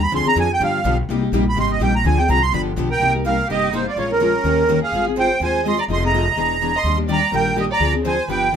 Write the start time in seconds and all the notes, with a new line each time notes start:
Already playing: D#2
0.03 B5
0.12 D2 D3 F3 C4 D4 G#4 C6
0.26 C4 D4 G#4 A#5, muted upright bass stroke
0.36 F2 D3 F3 C4 D4 G#4
0.40 G#5
0.53 G5
0.60 G2 D3 F3 B3 D4 G4 F5
0.84 B1 D3 F3 B3 D4 G4
1.09 C2 C3 G3 A#3 D#4 G4
1.22 A#3 D#4 G4
1.32 A#1 C3 G3 A#3 D#4 G4
1.49 B5
1.56 G#1 C3 G3 A#3 D#4 G4 C6
1.72 D#5
1.79 A#1 C3 G3 A#3 D#4 G4 G5
1.95 A#5
2.04 D2 D3 F3 C4 D4 G#4 G#5
2.18 C4 D4 G#4 G5
2.28 C2 D3 F3 C4 D4 G#4 A#5
2.42 C6
2.52 G1 D3 F3 B3 D4 G4 B5
2.76 B1 D3 F3 B3 D4 G4
2.90 A#4 G5
3.00 C2 C3 G3 A#3 D#4 G4
3.15 A#3 D#4 G4
3.25 C3 G3 A#3 D#4 G4 A#4 F5
3.48 G1 C3 G3 A#3 D#4 G4 D#5
3.73 C3 G3 A#3 D#4 G4 C5
3.87 F4 D5
3.96 A#1 F3 G#3 C#4 F4 A#4 C#5
4.09 C#4 F4 A#4
4.21 F3 G#3 C#4 F4 A#4
4.44 D#2 D#3 A#3 C#4 G4 A#4
4.69 D#3 A#3 C#4 G4 A#4
4.82 G#4 F5
4.92 G#1 G#3 C4 F4 G#4
5.07 C4 F4 G#4
5.17 G#3 C4 F4 G#4 C5 G5
5.40 D#2 G#3 C4 F4 G#4 C5 G#5
5.65 G#3 C4 F4 G#4 D#5 C6
5.79 D5 A#5
5.88 F1 F3 C4 D#4 G#4 D#5
5.93 C6
6.03 C4 D#4 G#4 D#5 A#5
6.14 F3 C4 D#4 G#4
6.36 E1 E3 B3 D4 G#4 B4
6.62 E3 B3 D4 G#4 B4
6.75 D#5 C6
6.84 D#2 D#3 G3 A#3 D4 G4
6.98 A#3 D4 G4
7.08 D#3 G3 A#3 D4 G4 D5
7.13 A#5
7.32 A#1 D#3 G3 A#3 D4 G4 A#4 G5
7.55 D#3 G3 A#3 D4 G4
7.60 D#5
7.70 D5 A#5
7.80 D2 D3 F3 C4 D4 G#4
7.93 C4 D4 G#4
8.04 D3 F3 C4 D4 G#4 C5 G#5
8.28 G1 D3 F3 B3 D4 G4 B4 G5
8.53 D3 F3 B3